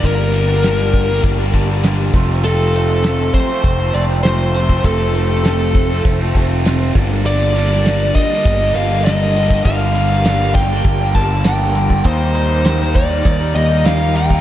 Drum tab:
HH |x-x-x-x-x-x-x-x-|x-x-x-x-x-x-x-x-|x-x-x-x-x-x-x-x-|x-x-x-x-x-x-x-x-|
SD |----o-------o---|----o-------o---|----o-------o---|----o-------o---|
BD |o-----o-o-o---o-|------o-o------o|o-----o-o-o---o-|------o-o------o|

HH |x-x-x-x-x-x-x-x-|x-x-x-x-x-x-x-x-|
SD |----o-------o---|----oo------o---|
BD |o-----o-o-o----o|o-----o-o------o|